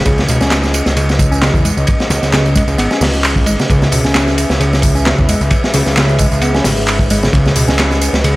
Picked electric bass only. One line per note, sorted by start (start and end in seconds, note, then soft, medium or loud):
0.05 0.27 C#3 medium
0.28 0.40 B2 medium
0.41 0.85 C#4 medium
0.97 1.31 C#3 medium
1.32 1.41 C#4 medium
1.42 1.64 C#3 medium
1.64 1.76 G#3 medium
1.78 1.87 C#3 medium
2.10 2.17 C#3 loud
2.33 2.55 C#3 medium
2.55 2.62 G#3 medium
2.78 2.89 B3 medium
2.91 3.00 C#4 medium
3.01 3.07 C#3 loud
3.47 3.53 G#3 medium
3.59 3.65 C#3 medium
3.70 3.91 C#3 medium
3.92 4.04 B2 medium
4.05 4.49 C#4 medium
4.60 4.94 C#3 medium
4.95 5.05 C#4 medium
5.06 5.27 C#3 medium
5.29 5.40 G#3 medium
5.41 5.51 C#3 medium
5.74 5.80 C#3 loud
5.97 6.19 C#3 medium
6.19 6.26 G#3 medium
6.42 6.53 B3 medium
6.55 6.64 C#4 medium
6.65 6.71 C#3 loud
7.11 7.17 G#3 medium
7.23 7.28 C#3 medium
7.33 7.55 C#3 medium
7.56 7.67 B2 medium
7.68 8.12 C#4 medium
8.24 8.36 C#3 loud